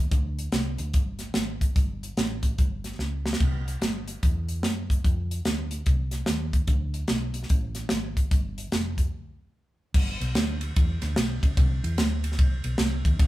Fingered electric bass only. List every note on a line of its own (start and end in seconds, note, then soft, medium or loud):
0.11 0.46 D2 medium
0.52 0.75 C2 medium
0.79 0.95 D2 medium
0.94 1.29 G1 medium
1.35 1.70 G#1 medium
1.76 2.11 G1 loud
2.17 2.52 A1 medium
2.59 2.93 G1 loud
2.99 3.34 C#2 medium
3.40 3.75 C2 loud
3.81 4.16 G1 medium
4.23 4.64 E2 medium
4.64 4.98 F#2 medium
5.04 5.39 F2 medium
5.46 5.80 D2 medium
5.87 6.21 C2 medium
6.27 6.62 D#2 medium
6.68 7.03 D2 loud
7.09 7.44 B1 medium
7.50 7.85 A1 medium
7.91 8.26 G#1 medium
8.31 8.66 G1 loud
8.72 9.07 F1 medium
9.94 10.17 G1 loud
10.21 10.33 B1 medium
10.35 10.70 D2 medium
10.77 10.98 E2 medium
11.02 11.15 D2 loud
11.17 11.39 B1 medium
11.43 11.55 C#2 medium
11.57 11.79 C2 loud
11.84 11.96 E2 loud
11.98 12.39 D2 medium
12.39 12.61 C2 medium
12.64 12.77 B1 medium
12.79 13.01 C2 medium
13.05 13.17 D#2 medium
13.19 13.27 D2 loud